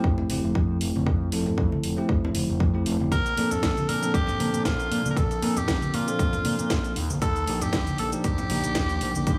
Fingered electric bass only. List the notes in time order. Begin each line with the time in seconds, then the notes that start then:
0.04 F2
0.30 F1
0.44 F1
0.55 F2
0.81 F1
0.95 F1
1.07 F2
1.33 F1
1.58 F2
1.84 F1
2.09 F2
2.35 F1
2.49 F1
2.60 F2
2.86 F1
3.00 F1
3.12 A#1
3.38 A#2
3.63 A#1
3.89 A#2
4.14 A#1
4.40 A#2
4.54 A#2
4.65 A#1
4.91 A#2
5.05 A#2
5.17 A#1
5.42 A#2
5.57 muted fingered electric bass stroke
5.68 A#1
5.94 A#2
6.19 A#1
6.45 A#2
6.59 A#2
6.70 A#1
6.97 D#2
7.10 A#1
7.22 D#2
7.48 A#1
7.73 D#2
7.99 A#1
8.24 D#2
8.50 A#1
8.64 A#1
8.76 D#2
9.02 A#1
9.16 A#1
9.27 D#2